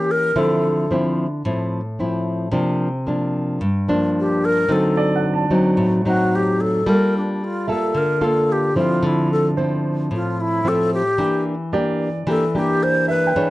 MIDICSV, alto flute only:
0, 0, Header, 1, 2, 480
1, 0, Start_track
1, 0, Key_signature, -1, "minor"
1, 0, Tempo, 541516
1, 322, Time_signature, 4, 2, 24, 8
1, 11966, End_track
2, 0, Start_track
2, 0, Title_t, "Alto flute"
2, 0, Program_c, 0, 73
2, 0, Note_on_c, 0, 67, 76
2, 99, Note_on_c, 0, 70, 98
2, 112, Note_off_c, 0, 67, 0
2, 342, Note_on_c, 0, 69, 78
2, 355, Note_off_c, 0, 70, 0
2, 812, Note_off_c, 0, 69, 0
2, 3721, Note_on_c, 0, 67, 79
2, 3943, Note_on_c, 0, 70, 106
2, 3956, Note_off_c, 0, 67, 0
2, 4185, Note_on_c, 0, 69, 83
2, 4198, Note_off_c, 0, 70, 0
2, 4655, Note_off_c, 0, 69, 0
2, 5375, Note_on_c, 0, 66, 84
2, 5631, Note_on_c, 0, 67, 79
2, 5645, Note_off_c, 0, 66, 0
2, 5857, Note_on_c, 0, 69, 92
2, 5871, Note_off_c, 0, 67, 0
2, 6107, Note_on_c, 0, 70, 86
2, 6120, Note_off_c, 0, 69, 0
2, 6336, Note_off_c, 0, 70, 0
2, 6355, Note_on_c, 0, 62, 43
2, 6596, Note_on_c, 0, 65, 74
2, 6610, Note_off_c, 0, 62, 0
2, 6820, Note_off_c, 0, 65, 0
2, 6826, Note_on_c, 0, 69, 84
2, 7070, Note_on_c, 0, 70, 83
2, 7083, Note_off_c, 0, 69, 0
2, 7305, Note_on_c, 0, 69, 79
2, 7319, Note_off_c, 0, 70, 0
2, 7553, Note_on_c, 0, 67, 76
2, 7567, Note_off_c, 0, 69, 0
2, 7776, Note_off_c, 0, 67, 0
2, 7781, Note_on_c, 0, 65, 81
2, 8037, Note_on_c, 0, 64, 68
2, 8050, Note_off_c, 0, 65, 0
2, 8257, Note_off_c, 0, 64, 0
2, 8262, Note_on_c, 0, 69, 84
2, 8401, Note_off_c, 0, 69, 0
2, 8997, Note_on_c, 0, 65, 71
2, 9224, Note_on_c, 0, 64, 79
2, 9237, Note_off_c, 0, 65, 0
2, 9469, Note_on_c, 0, 69, 89
2, 9483, Note_off_c, 0, 64, 0
2, 9689, Note_off_c, 0, 69, 0
2, 9695, Note_on_c, 0, 67, 87
2, 10135, Note_off_c, 0, 67, 0
2, 10906, Note_on_c, 0, 69, 88
2, 11117, Note_off_c, 0, 69, 0
2, 11138, Note_on_c, 0, 67, 80
2, 11373, Note_on_c, 0, 72, 93
2, 11387, Note_off_c, 0, 67, 0
2, 11600, Note_off_c, 0, 72, 0
2, 11606, Note_on_c, 0, 71, 94
2, 11966, Note_off_c, 0, 71, 0
2, 11966, End_track
0, 0, End_of_file